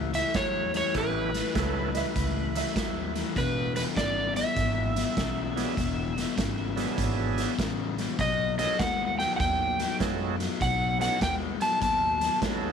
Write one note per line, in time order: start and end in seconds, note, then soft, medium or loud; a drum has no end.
0.00 0.20 C#2 medium
0.00 0.10 A2 medium
0.00 0.10 E3 medium
0.14 0.33 A2 medium
0.14 0.33 E3 medium
0.14 0.36 E5 medium
0.14 snare soft
0.14 closed hi-hat medium
0.34 0.80 E2 medium
0.34 0.70 A2 medium
0.34 0.70 F#3 medium
0.34 0.76 C#5 medium
0.34 kick medium
0.34 snare loud
0.34 closed hi-hat medium
0.74 0.93 A2 medium
0.74 0.93 E3 medium
0.74 0.97 C#5 medium
0.74 snare soft
0.74 closed hi-hat medium
0.94 1.40 A1 medium
0.94 1.31 A2 medium
0.94 1.31 E3 medium
0.94 1.30 A3 medium
0.94 1.31 B3 medium
0.94 1.31 C#4 medium
0.94 1.31 E4 medium
0.94 1.31 G4 medium
0.94 2.73 B4 medium
0.94 kick medium
0.94 snare soft
0.94 closed hi-hat medium
1.34 1.53 A2 medium
1.34 1.53 E3 medium
1.34 snare soft
1.34 closed hi-hat medium
1.54 2.01 C#2 medium
1.54 1.91 A2 medium
1.54 1.91 F#3 medium
1.54 1.90 A3 medium
1.54 1.91 B3 medium
1.54 1.91 C#4 medium
1.54 1.91 E4 medium
1.54 1.91 A4 medium
1.54 kick medium
1.54 snare loud
1.54 closed hi-hat medium
1.92 2.13 A2 medium
1.92 2.14 E3 medium
1.92 1.98 D#5 medium
1.92 snare soft
1.92 closed hi-hat medium
1.97 2.55 E5 medium
2.15 2.61 C#2 medium
2.15 2.51 A2 medium
2.15 2.51 E3 medium
2.15 kick medium
2.15 snare soft
2.15 closed hi-hat medium
2.55 2.74 A2 medium
2.55 2.74 E3 medium
2.55 3.15 E5 medium
2.55 snare soft
2.55 closed hi-hat medium
2.76 3.21 D#2 medium
2.76 3.11 A2 medium
2.76 3.12 F#3 medium
2.76 kick medium
2.76 snare loud
2.76 closed hi-hat medium
3.15 3.34 A2 medium
3.15 3.34 E3 medium
3.15 snare soft
3.15 closed hi-hat medium
3.35 3.82 E1 medium
3.35 3.71 E2 medium
3.35 3.72 B2 medium
3.35 3.74 B4 medium
3.35 kick medium
3.35 snare soft
3.35 closed hi-hat medium
3.75 3.94 E2 medium
3.75 3.94 B2 medium
3.75 3.82 B4 medium
3.75 snare soft
3.75 closed hi-hat medium
3.96 4.42 G#1 medium
3.96 4.32 E2 medium
3.96 4.32 C#3 medium
3.96 4.34 D5 medium
3.96 kick medium
3.96 snare loud
3.96 closed hi-hat medium
4.36 4.55 E2 medium
4.36 4.55 B2 medium
4.36 7.55 E5 medium
4.36 snare soft
4.36 closed hi-hat medium
4.56 5.02 G#1 medium
4.56 4.92 E2 medium
4.56 4.93 B2 medium
4.56 kick medium
4.56 snare soft
4.56 closed hi-hat medium
4.96 5.15 E2 medium
4.96 5.15 B2 medium
4.96 snare soft
4.96 closed hi-hat medium
5.17 5.62 B1 medium
5.17 5.53 E2 medium
5.17 5.53 C#3 medium
5.17 kick medium
5.17 snare loud
5.17 closed hi-hat medium
5.55 5.75 E2 medium
5.55 5.75 B2 medium
5.55 5.75 F#3 medium
5.55 5.75 B3 medium
5.55 5.75 D4 medium
5.55 5.76 E4 medium
5.55 5.76 G#4 medium
5.55 snare soft
5.55 closed hi-hat medium
5.77 6.23 E1 medium
5.77 6.13 E2 medium
5.77 6.13 B2 medium
5.77 kick medium
5.77 snare soft
5.77 closed hi-hat medium
6.17 6.36 E2 medium
6.17 6.36 B2 medium
6.17 snare soft
6.17 closed hi-hat medium
6.37 6.83 G#1 medium
6.37 6.73 E2 medium
6.37 6.74 C#3 medium
6.37 kick medium
6.37 snare loud
6.37 closed hi-hat medium
6.76 6.96 E2 medium
6.76 6.96 B2 medium
6.76 7.54 F#3 medium
6.76 7.54 B3 medium
6.76 7.54 D4 medium
6.76 7.54 E4 medium
6.76 7.54 G#4 medium
6.76 snare soft
6.76 closed hi-hat medium
6.98 7.44 G#1 medium
6.98 7.34 E2 medium
6.98 7.34 B2 medium
6.98 kick medium
6.98 snare soft
6.98 closed hi-hat medium
7.38 7.57 E2 medium
7.38 7.57 B2 medium
7.38 snare soft
7.38 closed hi-hat medium
7.58 8.04 A1 medium
7.58 7.94 E2 medium
7.58 7.95 C#3 medium
7.58 kick medium
7.58 snare loud
7.58 closed hi-hat medium
7.98 8.17 E2 medium
7.98 8.17 B2 medium
7.98 snare soft
7.98 closed hi-hat medium
8.19 8.64 B1 medium
8.19 8.55 B2 medium
8.19 8.55 F#3 medium
8.19 8.58 D#5 medium
8.19 kick medium
8.19 snare soft
8.19 closed hi-hat medium
8.58 8.77 B2 medium
8.58 8.77 F#3 medium
8.58 8.78 F#3 medium
8.58 8.77 B3 medium
8.58 8.77 C#4 medium
8.58 8.77 D#4 medium
8.58 8.78 A4 medium
8.58 8.80 D#5 medium
8.58 snare soft
8.58 closed hi-hat medium
8.79 9.25 D#2 medium
8.79 9.15 B2 medium
8.79 9.16 G#3 medium
8.79 9.18 F#5 medium
8.79 kick medium
8.79 snare loud
8.79 closed hi-hat medium
9.19 9.38 B2 medium
9.19 9.38 F#3 medium
9.19 9.35 G5 medium
9.19 snare soft
9.19 closed hi-hat medium
9.36 9.85 D#2 medium
9.36 9.76 B2 medium
9.36 9.40 F#5 medium
9.36 9.96 G5 medium
9.36 kick medium
9.36 closed hi-hat medium
9.40 9.76 F#3 medium
9.40 snare soft
9.79 9.98 B2 medium
9.79 9.98 F#3 medium
9.79 snare soft
9.79 closed hi-hat medium
10.00 10.46 F#2 medium
10.00 10.36 B2 medium
10.00 10.36 F#3 medium
10.00 10.36 G#3 medium
10.00 10.36 B3 medium
10.00 10.36 C#4 medium
10.00 10.36 D#4 medium
10.00 10.36 A4 medium
10.00 kick medium
10.00 snare loud
10.00 closed hi-hat medium
10.40 10.59 B2 medium
10.40 10.59 F#3 medium
10.40 snare soft
10.40 closed hi-hat medium
10.61 11.06 B1 medium
10.61 10.96 B2 medium
10.61 10.97 F#3 loud
10.61 11.00 F#5 medium
10.61 kick medium
10.61 snare soft
10.61 closed hi-hat medium
10.99 11.19 B2 medium
10.99 11.18 F#3 medium
10.99 11.19 F#3 medium
10.99 11.19 B3 medium
10.99 11.19 C#4 medium
10.99 11.19 D#4 medium
10.99 11.19 A4 medium
10.99 11.22 F#5 medium
10.99 snare soft
10.99 closed hi-hat medium
11.21 11.67 D#2 medium
11.21 11.57 B2 medium
11.21 11.57 G#3 medium
11.21 11.33 G5 medium
11.21 kick medium
11.21 snare loud
11.21 closed hi-hat medium
11.61 11.80 B2 medium
11.61 11.80 F#3 medium
11.61 11.81 A5 medium
11.61 snare soft
11.61 closed hi-hat medium
11.81 12.27 D#2 medium
11.81 12.17 B2 medium
11.81 12.17 F#3 medium
11.81 12.38 A5 medium
11.81 kick medium
11.81 snare soft
11.81 closed hi-hat medium
12.21 12.40 B2 medium
12.21 12.40 F#3 medium
12.21 snare soft
12.21 closed hi-hat medium
12.40 12.72 D#2 medium
12.40 12.72 B2 medium
12.40 12.72 F#3 medium
12.40 12.72 G#3 medium
12.40 12.72 B3 medium
12.40 12.72 C#4 medium
12.40 12.72 D#4 medium
12.40 12.72 A4 medium
12.40 kick medium
12.40 snare loud
12.40 closed hi-hat medium